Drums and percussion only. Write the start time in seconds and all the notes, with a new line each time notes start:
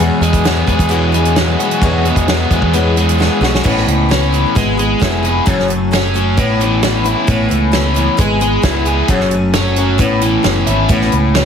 0.23 closed hi-hat
0.33 kick, closed hi-hat
0.45 snare, closed hi-hat
0.68 kick, closed hi-hat
0.79 kick, closed hi-hat
0.91 closed hi-hat
1.14 closed hi-hat
1.25 closed hi-hat
1.36 snare, closed hi-hat
1.60 closed hi-hat
1.71 closed hi-hat
1.82 kick, closed hi-hat
2.05 closed hi-hat
2.16 kick, closed hi-hat
2.28 snare, closed hi-hat
2.51 kick, closed hi-hat
2.62 kick
2.74 closed hi-hat
2.97 closed hi-hat
3.09 closed hi-hat
3.21 snare
3.43 snare
3.55 snare
3.65 kick, crash
3.77 snare
3.88 closed hi-hat
4.11 snare, closed hi-hat
4.34 closed hi-hat
4.56 kick, closed hi-hat
4.79 closed hi-hat
5.02 kick, snare, closed hi-hat
5.24 closed hi-hat
5.47 kick, closed hi-hat
5.59 snare
5.70 closed hi-hat
5.93 snare, closed hi-hat
6.15 closed hi-hat
6.38 kick, closed hi-hat
6.61 closed hi-hat
6.83 snare, closed hi-hat
7.05 closed hi-hat
7.28 kick, closed hi-hat
7.51 closed hi-hat
7.73 snare, closed hi-hat
7.96 closed hi-hat
8.19 kick, closed hi-hat
8.41 closed hi-hat
8.63 kick, snare, closed hi-hat
8.86 closed hi-hat
9.08 kick, closed hi-hat
9.20 snare
9.31 closed hi-hat
9.53 snare, closed hi-hat
9.76 closed hi-hat
9.99 kick, closed hi-hat
10.21 closed hi-hat
10.44 snare, closed hi-hat
10.67 closed hi-hat
10.89 kick, closed hi-hat
11.01 snare
11.12 closed hi-hat
11.35 snare, closed hi-hat